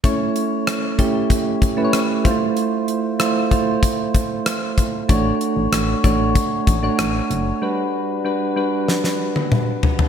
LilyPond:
<<
  \new Staff \with { instrumentName = "Synth keys" } { \time 4/4 \key a \mixolydian \tempo 4 = 95 <a cis' e' cis''>4 r8 <a cis' e' g'>8. r8 <a cis' e' b' cis''>8. <g a e' f' c''>8~ | <g a e' f' c''>8. r16 <a e' f' c''>16 r16 <a e' f' c''>4~ <a e' f' c''>16 r4 r16 | <a d' fis' cis''>4 r8 <a d' fis' cis''>8. r8 <a d' fis' cis''>8. r8 | <g d' fis' b'>8. r16 <g d' fis' b'>16 r16 <g d' fis' b'>4~ <g d' fis' b'>16 r4 r16 | }
  \new Staff \with { instrumentName = "FM bass" } { \clef bass \time 4/4 \key a \mixolydian r1 | r1 | a,,8 r16 a,,16 a,,8 a,,8. r16 a,,8 a,,8 fis,,8 | r1 | }
  \new DrumStaff \with { instrumentName = "Drums" } \drummode { \time 4/4 <hh bd>8 hh8 <hh ss>8 <hh bd>8 <hh bd>8 <hh bd>8 <hh ss>8 <hh bd>8 | hh8 hh8 <hh ss>8 <hh bd>8 <hh bd>8 <hh bd>8 <hh ss>8 <hh bd>8 | <hh bd>8 hh8 <hh ss>8 <hh bd>8 <hh bd>8 <hh bd>8 <hh ss>8 hh8 | r4 r4 sn16 sn8 tommh16 toml8 tomfh16 tomfh16 | }
>>